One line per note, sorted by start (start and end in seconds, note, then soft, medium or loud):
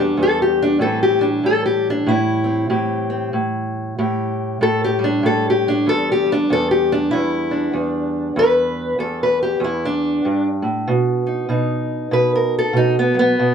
0.00 0.16 E2 medium
0.00 0.81 G3 soft
0.00 0.20 D4 medium
0.17 0.81 E2 medium
0.23 0.42 A4 medium
0.42 0.62 G4 medium
0.62 0.81 D4 medium
0.79 1.43 A2 medium
0.79 4.31 E3 soft
0.79 1.19 G3 soft
0.79 1.21 C4 medium
0.79 1.02 A4 medium
1.03 1.24 G4 medium
1.19 4.98 G3 soft
1.19 1.44 D4 medium
1.43 2.06 A2 medium
1.43 1.65 A4 loud
1.66 1.87 G4 medium
1.90 2.10 D4 medium
2.06 2.69 A2 medium
2.06 2.69 E4 medium
2.44 3.08 C4 medium
2.70 3.32 A2 medium
2.70 3.36 G4 soft
3.10 3.32 C4 medium
3.33 3.97 A2 medium
3.98 4.60 A2 medium
3.98 4.62 G4 soft
4.61 5.22 A2 medium
4.61 4.83 A4 loud
4.84 5.04 G4 loud
4.99 6.26 G3 medium
5.04 5.24 D4 medium
5.23 5.86 A2 medium
5.23 5.46 A4 medium
5.50 5.68 G4 medium
5.68 5.88 D4 loud
5.86 6.50 E2 medium
5.86 6.09 A4 loud
6.12 6.30 G4 loud
6.26 10.88 G3 soft
6.32 6.51 D4 loud
6.50 7.13 E2 medium
6.50 6.71 A4 loud
6.71 6.91 G4 medium
6.92 7.12 D4 loud
7.11 7.72 E2 medium
7.11 7.74 E4 loud
7.51 8.35 D4 medium
7.73 8.35 E2 medium
8.36 8.97 E2 medium
8.36 9.00 B4 loud
8.99 9.59 E2 medium
8.99 9.21 A4 medium
9.23 9.42 B4 medium
9.43 9.63 G4 medium
9.60 10.24 E2 medium
9.64 9.84 E4 medium
9.85 10.47 D4 loud
10.25 10.63 G2 medium
10.62 10.87 A2 medium
10.88 11.48 B2 medium
11.27 11.49 D#4 soft
11.49 12.11 B2 medium
11.49 12.75 D#4 soft
12.11 12.72 B2 medium
12.11 12.34 B4 medium
12.36 12.55 A#4 medium
12.59 12.77 A4 loud
12.73 13.34 B2 medium
12.73 12.97 D#4 medium
12.99 13.18 B3 medium
13.14 13.35 F#3 soft
13.19 13.54 B3 loud
13.39 13.54 B2 medium